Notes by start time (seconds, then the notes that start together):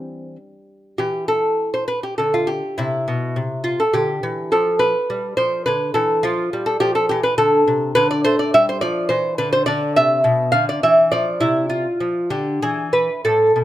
Already playing: E3 G3 C4
0.98 E3 G4
1.28 A4
1.74 C5
1.88 B4
2.03 G4
2.18 D3 A4
2.34 F4
2.47 G4
2.78 C3 E4
3.08 B2
3.36 C3
3.64 F4
3.80 A4
3.94 D3 G4
4.23 E3
4.52 F3 A4
4.79 B4
5.10 G3
5.37 F3 C5
5.66 D3 B4
5.94 E3 A4
6.23 F3 F4
6.53 G3
6.66 A4
6.80 F3 G4
6.95 A4
7.09 E3 G4
7.23 B4
7.38 D3 A4
7.68 C3
7.95 D3 B4
8.11 D5
8.24 A3 C5
8.39 D5
8.54 G3 E5
8.69 C5
8.81 F3 D5
9.09 E3 C5
9.38 D3 B4
9.53 C5
9.66 D3 D5
9.96 C3 E5
10.24 B2
10.52 D3 F5
10.69 D5
10.83 E3 E5
11.12 F3 D5
11.41 C3 E4
11.70 F4
12.00 F3
12.30 D3 G4
12.62 E3 G#4
12.93 B4
13.25 A2 A4
13.56 B2